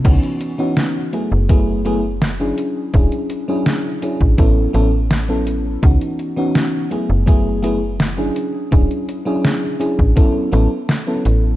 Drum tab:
CC |x---------------|----------------|----------------|----------------|
HH |xxx-x-x-x-x-x-x-|xxx-x-x-x-x-x-x-|xxx-x-x-x-x-x-x-|xxx-x-x-x-x-x-x-|
SD |----o-------o---|----o-------o---|----o-------o---|----o-------o---|
BD |o-------o-------|o------oo-------|o-------o-------|o------oo-------|